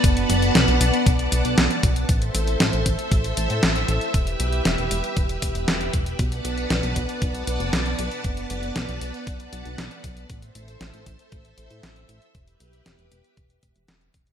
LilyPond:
<<
  \new Staff \with { instrumentName = "String machine" } { \time 4/4 \key e \minor \tempo 4 = 117 << { <b b' a''>1 | e''1~ | e''1 | <b a''>1~ |
<b a''>1 | e''1~ | e''1 | } \\ { <d'' fis''>1 | <a' c''>1 | <g' b'>1 | <d'' fis''>1~ |
<d'' fis''>1 | <a' c''>1 | <g' b'>1 | } >> }
  \new Staff \with { instrumentName = "Analog synth bass" } { \clef bass \time 4/4 \key e \minor fis,,8 fis,,8 b,,16 b,,16 b,,16 r16 b,,8 b,,16 b,,16 b,,16 r16 b,,8 | a,,8 a,,8 a,,16 a,,16 a,,16 r16 a,,8 a,,16 a,16 a,,8 a,,16 r16 | e,,8 b,,8 e,,16 e,,16 e,,16 r16 e,,8 e,,16 e,,16 e,,8 e,,8 | b,,8 b,,8 b,,16 b,,16 b,,16 r16 b,,8 b,,16 fis,,16 b,,8 b,,16 r16 |
fis,,8 fis,,8 b,,16 b,,16 b,,16 r16 b,,8 b,,16 b,,16 b,,16 r16 b,,8 | a,,8 a,,8 a,,16 a,,16 a,,16 r16 a,,8 a,,16 a,16 a,,8 a,,16 r16 | e,,8 b,,8 e,,16 e,,16 e,,16 r16 e,,8 e,,16 e,,16 e,,8 e,,8 | }
  \new DrumStaff \with { instrumentName = "Drums" } \drummode { \time 4/4 <hh bd>16 hh16 hh16 hh16 <hh sn>16 hh16 hh16 hh16 <hh bd>16 hh16 hh16 hh16 <hh sn>16 hh16 <hh bd>16 hh16 | <hh bd>16 hh16 hh16 hh16 <hh sn>16 hh16 <hh bd>16 hh16 <hh bd>16 hh16 hh16 hh16 <hh sn>16 hh16 hh16 hh16 | <hh bd>16 hh16 hh16 hh16 <hh sn>16 hh16 hh16 hh16 <hh bd>16 hh16 <hh bd>16 hh16 <hh sn>16 hh16 <hh bd>16 hh16 | <hh bd>16 hh16 hh16 hh16 <hh sn>16 hh16 <hh bd>16 hh16 <hh bd>16 hh16 hh16 hh16 <hh sn>16 hh16 hh16 hh16 |
<hh bd>16 hh16 hh16 hh16 <hh sn>16 hh16 hh16 hh16 <hh bd>16 hh16 hh16 hh16 <hh sn>16 hh16 <hh bd>16 hh16 | <hh bd>16 hh16 hh16 hh16 <hh sn>16 hh16 <hh bd>16 hh16 <hh bd>16 hh16 hh16 hh16 <hh sn>16 hh16 hh16 hh16 | <hh bd>16 hh16 hh16 hh16 <hh sn>16 hh16 hh16 hh16 <hh bd>16 hh16 <hh bd>16 hh16 <hh sn>16 hh16 <hh bd>16 hh16 | }
>>